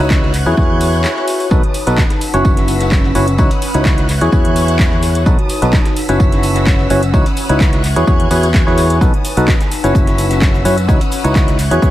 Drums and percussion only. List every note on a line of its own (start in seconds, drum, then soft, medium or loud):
0.10 kick loud
0.10 snare loud
0.10 clap loud
0.10 tambourine medium
0.23 snare soft
0.34 clap soft
0.34 open hi-hat medium
0.34 tambourine medium
0.46 tambourine soft
0.57 kick loud
0.57 tambourine soft
0.81 open hi-hat medium
0.81 tambourine medium
0.93 tambourine soft
1.04 snare loud
1.04 clap loud
1.04 tambourine medium
1.04 tambourine soft
1.17 snare soft
1.28 open hi-hat medium
1.28 tambourine medium
1.40 open hi-hat medium
1.40 tambourine soft
1.51 kick loud
1.51 tambourine medium
1.51 tambourine soft
1.63 closed hi-hat soft
1.74 open hi-hat loud
1.74 tambourine medium
1.87 closed hi-hat medium
1.87 tambourine medium
1.98 kick loud
1.98 snare loud
1.98 clap loud
1.98 tambourine medium
2.10 snare medium
2.10 closed hi-hat medium
2.21 open hi-hat loud
2.21 tambourine medium
2.33 closed hi-hat medium
2.33 tambourine medium
2.45 kick loud
2.45 tambourine medium
2.45 tambourine soft
2.57 snare soft
2.57 closed hi-hat soft
2.68 open hi-hat loud
2.68 tambourine medium
2.81 snare soft
2.81 closed hi-hat medium
2.81 tambourine medium
2.92 kick loud
2.92 snare loud
2.92 clap loud
2.92 tambourine medium
3.04 snare soft
3.15 open hi-hat loud
3.15 tambourine medium
3.27 closed hi-hat medium
3.27 tambourine soft
3.38 kick loud
3.38 tambourine soft
3.38 tambourine medium
3.51 closed hi-hat soft
3.62 open hi-hat loud
3.62 tambourine medium
3.74 closed hi-hat medium
3.74 tambourine soft
3.85 kick loud
3.85 snare loud
3.85 clap loud
3.85 tambourine soft
3.85 tambourine medium
3.98 snare soft
3.98 closed hi-hat soft
4.09 clap soft
4.09 open hi-hat loud
4.09 tambourine medium
4.21 closed hi-hat medium
4.21 tambourine medium
4.32 kick loud
4.32 tambourine soft
4.32 tambourine medium
4.45 closed hi-hat soft
4.56 open hi-hat loud
4.56 tambourine medium
4.68 closed hi-hat medium
4.68 tambourine soft
4.79 kick loud
4.79 snare loud
4.79 clap loud
4.79 tambourine medium
4.79 tambourine soft
4.92 snare soft
5.02 snare soft
5.02 open hi-hat loud
5.02 tambourine medium
5.15 closed hi-hat medium
5.15 tambourine medium
5.26 kick loud
5.26 tambourine soft
5.26 tambourine medium
5.39 closed hi-hat soft
5.49 open hi-hat loud
5.49 tambourine medium
5.62 closed hi-hat medium
5.62 tambourine medium
5.73 kick loud
5.73 snare loud
5.73 clap loud
5.73 tambourine soft
5.73 tambourine medium
5.85 snare medium
5.85 closed hi-hat soft
5.96 open hi-hat loud
5.96 tambourine medium
5.96 tambourine loud
6.09 closed hi-hat medium
6.09 tambourine soft
6.20 kick loud
6.20 tambourine soft
6.20 tambourine medium
6.32 snare soft
6.32 closed hi-hat soft
6.43 open hi-hat loud
6.43 tambourine loud
6.43 tambourine medium
6.56 snare soft
6.56 closed hi-hat medium
6.56 tambourine soft
6.67 kick loud
6.67 snare loud
6.67 clap loud
6.67 tambourine soft
6.67 tambourine medium
6.79 snare soft
6.90 open hi-hat loud
6.90 tambourine medium
6.90 tambourine loud
7.03 closed hi-hat medium
7.03 tambourine medium
7.14 kick loud
7.14 tambourine medium
7.14 tambourine soft
7.26 closed hi-hat soft
7.37 open hi-hat loud
7.37 tambourine medium
7.49 closed hi-hat medium
7.49 tambourine soft
7.60 kick loud
7.60 snare loud
7.60 clap loud
7.60 tambourine soft
7.60 tambourine medium
7.73 snare soft
7.73 closed hi-hat soft
7.84 clap soft
7.84 open hi-hat loud
7.84 tambourine medium
7.96 closed hi-hat medium
7.96 tambourine medium
8.07 kick loud
8.07 tambourine medium
8.07 tambourine soft
8.20 closed hi-hat soft
8.31 open hi-hat loud
8.31 tambourine medium
8.43 closed hi-hat medium
8.43 tambourine medium
8.54 kick loud
8.54 snare loud
8.54 clap loud
8.54 tambourine medium
8.67 snare soft
8.78 snare soft
8.78 open hi-hat loud
8.78 tambourine medium
8.90 closed hi-hat medium
8.90 tambourine medium
9.01 kick loud
9.01 tambourine medium
9.01 tambourine soft
9.01 shaker soft
9.14 closed hi-hat soft
9.14 shaker soft
9.25 open hi-hat loud
9.25 tambourine medium
9.25 shaker medium
9.37 closed hi-hat medium
9.37 tambourine soft
9.37 shaker soft
9.48 kick loud
9.48 snare loud
9.48 clap loud
9.48 tambourine medium
9.48 tambourine soft
9.48 shaker soft
9.61 snare medium
9.61 closed hi-hat soft
9.61 shaker soft
9.71 open hi-hat loud
9.71 tambourine medium
9.71 shaker medium
9.84 closed hi-hat medium
9.84 tambourine medium
9.84 shaker soft
9.95 kick loud
9.95 tambourine medium
9.95 tambourine soft
9.95 shaker soft
10.07 snare soft
10.07 closed hi-hat soft
10.07 shaker soft
10.18 open hi-hat loud
10.18 tambourine medium
10.18 shaker medium
10.31 snare soft
10.31 closed hi-hat medium
10.31 tambourine medium
10.31 shaker soft
10.42 kick loud
10.42 snare loud
10.42 clap loud
10.42 tambourine medium
10.42 shaker soft
10.54 snare soft
10.54 shaker soft
10.65 open hi-hat loud
10.65 tambourine medium
10.65 shaker medium
10.78 closed hi-hat medium
10.78 tambourine medium
10.78 shaker soft
10.89 kick loud
10.89 tambourine medium
10.89 tambourine soft
10.89 shaker soft
11.01 closed hi-hat soft
11.01 shaker soft
11.11 open hi-hat medium
11.11 tambourine medium
11.11 shaker medium
11.24 closed hi-hat medium
11.24 tambourine medium
11.24 shaker soft
11.35 kick loud
11.35 snare loud
11.35 clap loud
11.35 tambourine soft
11.35 tambourine medium
11.35 shaker soft
11.48 snare soft
11.48 closed hi-hat soft
11.48 shaker soft
11.59 clap soft
11.59 open hi-hat loud
11.59 tambourine medium
11.59 shaker medium
11.71 closed hi-hat medium
11.71 tambourine soft
11.71 shaker soft
11.82 kick loud
11.82 tambourine soft
11.82 tambourine medium
11.82 shaker soft